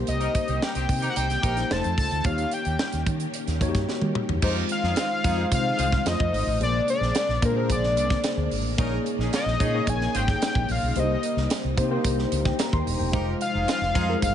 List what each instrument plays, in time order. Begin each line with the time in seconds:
Already playing: string machine D#3 A#3 C4 G4, tine electric piano A#3 D#4 G4 C5
0.07 fretless electric bass C2, analog synth lead D#5, closed hi-hat
0.20 horn section D#4 G4 A#4, closed hi-hat
0.35 kick, closed hi-hat
0.48 fretless electric bass C2, horn section C4 D#4 G4, closed hi-hat
0.62 horn section D#4 G4 A#4, analog synth lead G5, snare
0.75 fretless electric bass C2, horn section C4 D#4 G4, closed hi-hat
0.89 fretless electric bass C3, kick, open hi-hat
1.02 horn section D#4 G4 A#4, closed hi-hat
1.10 analog synth lead F#5
1.15 fretless electric bass C2, horn section D#4 G4 C5, analog synth lead G5, closed hi-hat
1.30 snare, closed hi-hat
1.42 fretless electric bass A#1, tine electric piano A#3 D#4 G4 C5, horn section D#4 G4 A#4, kick, closed hi-hat
1.57 snare, closed hi-hat
1.70 fretless electric bass F1, string machine A3 F4, tine electric piano A3 D#4 F4 C5, analog synth lead A5, snare
1.84 fretless electric bass F2, closed hi-hat
1.98 fretless electric bass C#2, analog synth lead A5, kick, open hi-hat
2.11 fretless electric bass D2, closed hi-hat
2.24 fretless electric bass D#2, string machine D#3 A#3 C#4 G4, tine electric piano A#3 D#4 G4 C#5, analog synth lead F5, kick, closed hi-hat
2.38 closed hi-hat
2.51 analog synth lead G5, closed hi-hat
2.65 fretless electric bass D#2, closed hi-hat
2.79 snare
2.92 fretless electric bass D#2, snare, closed hi-hat
3.06 fretless electric bass D#3, kick, closed hi-hat
3.20 closed hi-hat
3.34 closed hi-hat
3.47 fretless electric bass D#2, snare, closed hi-hat
3.61 fretless electric bass F2, tine electric piano A#3 D#4 F#4 C#5, kick, closed hi-hat
3.68 tine electric piano G4
3.74 fretless electric bass G2, kick, snare, closed hi-hat
3.89 snare
4.01 fretless electric bass D#3, high tom
4.15 mid tom
4.29 fretless electric bass E2, floor tom
4.42 fretless electric bass F2, string machine D#3 G#3 C4 F4, tine electric piano G#3 D#4 F4 C5, horn section D#4 G4 A#4, kick, crash
4.69 analog synth lead F5, closed hi-hat
4.83 fretless electric bass F2, horn section D#4 F4 G#4, snare
4.96 horn section G#3 C4 F4, snare, closed hi-hat
5.24 fretless electric bass F2, tine electric piano G#3 D#4 F4 C5, horn section D#4 F4 G#4, kick, closed hi-hat
5.37 tine electric piano G#3 D#4 F4 C5
5.52 fretless electric bass C3, analog synth lead F5, kick, closed hi-hat
5.78 fretless electric bass C2, horn section F4 G#4 C5, closed hi-hat
5.92 kick, snare
6.05 fretless electric bass F2, string machine A3, tine electric piano A3 D#4 F4 C5, analog synth lead D#5, snare, closed hi-hat
6.20 fretless electric bass F2, kick
6.33 fretless electric bass G#1, open hi-hat
6.46 fretless electric bass A1
6.59 fretless electric bass A#1, string machine C3 G#3 A#3 D4, tine electric piano A#3 D4 G#4 C5, analog synth lead D5, closed hi-hat
6.88 analog synth lead D5, closed hi-hat
7.01 fretless electric bass A#1, snare
7.15 snare, closed hi-hat
7.28 fretless electric bass A#1, snare
7.42 fretless electric bass A#2, tine electric piano A#3 D4 G#4 C5, analog synth lead A#4, kick, closed hi-hat
7.56 tine electric piano A#3 D4 G#4 C5
7.70 fretless electric bass A#1, analog synth lead D5, kick, closed hi-hat
7.84 snare
7.97 fretless electric bass C2, closed hi-hat
8.10 kick, snare
8.24 snare, closed hi-hat
8.37 fretless electric bass D2
8.51 fretless electric bass G#1, open hi-hat
8.64 fretless electric bass A1
8.77 fretless electric bass A#1, string machine C#3 G#3 D#4, tine electric piano A#3 D#4 G#4 C#5, horn section C#4 D#4 A#4, kick, closed hi-hat
9.06 closed hi-hat
9.18 fretless electric bass A#1, horn section C#4 D#4 G#4, snare
9.33 horn section A#3 C#4 F4, analog synth lead D#5, snare, closed hi-hat
9.46 fretless electric bass A#1, snare
9.59 fretless electric bass A#2, tine electric piano A#3 D#4 G#4 C#5, horn section C#4 D#4 G#4, kick, closed hi-hat
9.74 tine electric piano A#3 D#4 G#4 C#5
9.87 fretless electric bass A#1, analog synth lead G#5, kick, closed hi-hat
10.01 snare
10.15 fretless electric bass G#1, horn section F4 G#4 C5, analog synth lead G5, closed hi-hat
10.28 kick, snare
10.42 snare, closed hi-hat
10.55 fretless electric bass A#1, kick
10.69 fretless electric bass A#1, analog synth lead F5, open hi-hat
10.82 fretless electric bass B1
10.95 fretless electric bass C2, string machine C3 G3, tine electric piano A#3 D4 G4 C5, closed hi-hat
10.99 tine electric piano D#4, analog synth lead D#5
11.23 closed hi-hat
11.36 fretless electric bass C2, snare
11.50 snare, closed hi-hat
11.64 fretless electric bass C2
11.77 fretless electric bass C3, tine electric piano A#3 D#4 G4 C5, kick, closed hi-hat
11.90 tine electric piano A#3 D4 G4 C5
11.97 tine electric piano D#4
12.05 fretless electric bass C2, kick, closed hi-hat
12.19 snare
12.32 fretless electric bass C#2, closed hi-hat
12.45 tine electric piano G5, kick, snare
12.59 tine electric piano A#5, snare, closed hi-hat
12.73 fretless electric bass D#2, tine electric piano C6, kick
12.87 fretless electric bass D#1, open hi-hat
12.99 fretless electric bass E1, tine electric piano G5
13.12 fretless electric bass F1, string machine F3 G#3, tine electric piano G#3 D#4 F4 C5, horn section D#4 G4 A#4, kick, closed hi-hat
13.41 analog synth lead F5, closed hi-hat
13.54 fretless electric bass F1, horn section D#4 F4 G#4
13.68 horn section G#3 C4 F4, snare, closed hi-hat
13.81 fretless electric bass F1, snare
13.94 fretless electric bass F2, tine electric piano G#3 D#4 F4 C5, horn section D#4 F4 G#4, kick, closed hi-hat
14.08 tine electric piano G3 D#4 F4 A#4
14.14 tine electric piano G#3
14.22 fretless electric bass G1, analog synth lead F5, kick, closed hi-hat